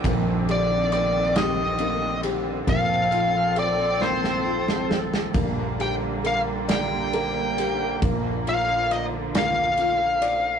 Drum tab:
RD |x-x-x-x-x-x-|x-x-x-------|x-x-x-x-x-x-|x-x-x-x-x-x-|
SD |------o-----|------oo-ooo|------o-----|------o-----|
BD |o-----------|o-----------|o-----------|o-----------|